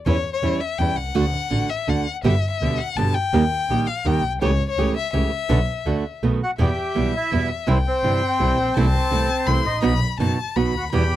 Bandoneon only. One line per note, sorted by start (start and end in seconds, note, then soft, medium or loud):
6.43 6.51 F#4 medium
6.43 6.51 F#5 loud
6.61 7.11 G4 medium
6.61 7.11 G5 medium
7.16 7.49 E4 medium
7.16 7.49 E5 loud
7.70 7.78 C4 medium
7.70 7.78 C5 medium
7.87 9.62 C4 medium
7.87 9.72 C5 loud
9.66 10.00 D#4 medium
9.66 10.00 D#5 medium
10.77 10.85 F#4 medium
10.77 10.85 F#5 medium
10.94 11.16 G4 medium
10.94 11.16 G5 loud